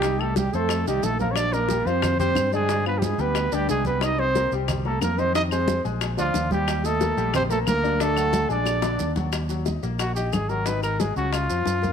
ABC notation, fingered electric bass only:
X:1
M:4/4
L:1/8
Q:1/4=181
K:Bb
V:1 name="Fingered electric bass" clef=bass
C,,3 F,,2 C,, B,,,2- | B,,,3 F,,3 G,,2- | G,,3 D,,2 D,, C,,2- | C,,3 C,,3 F,,2- |
F,,3 B,,,2 D,, E,,2- | E,,3 B,,,3 D,,2- | D,,3 B,,,3 E,,2- | [K:Ebm] E,,3 B,,,3 A,,,2- |
A,,,3 D,,2 F,, G,,2 |]